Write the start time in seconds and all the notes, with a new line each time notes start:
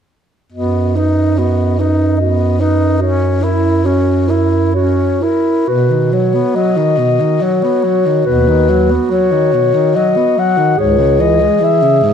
0.52 F#2 B3 F#4 D#5
0.96 D#4 B4
1.36 B3 F#4 D#5
1.79 D#4 B4
2.17 B3 F#4 D#5
2.59 D#4 B4
3.00 C#4 F#4 C#5
3.41 E4 A#4
3.85 C#4 F#4 C#5
4.28 E4 A#4
4.74 C#4 F#4 C#5
5.21 E4 A#4
5.67 B2 F#4 B4
5.91 D#3
6.12 F#3 C#5
6.34 B3
6.55 F#3 D#5
6.77 D#3
6.98 B2
7.20 D#3
7.41 F#3 C#5
7.64 B3
7.84 F#3
8.06 D#3
8.26 D#2 B2 B4
8.48 D#3
8.70 F#3
8.91 B3
9.10 F#3 C#5
9.32 D#3
9.53 B2
9.74 D#3
9.96 F#3 D#5
10.16 B3
10.37 F#3 F#5
10.57 D#3
10.78 C#2 G#2 G#4 C#5
10.98 C#3
11.20 E3 D#5
11.40 G#3
11.60 E3 E5
11.82 C#3
12.03 G#2